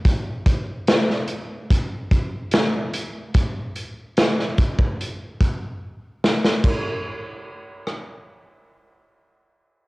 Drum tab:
CC |----------------|----------------|x---------------|
HH |x-x-x-x-x-x-x-x-|x-x-x-x-x-x-----|----------------|
SD |----oo------o---|----oo--------oo|------r---------|
BD |o-o-----o-o-----|o-----oo--o-----|o---------------|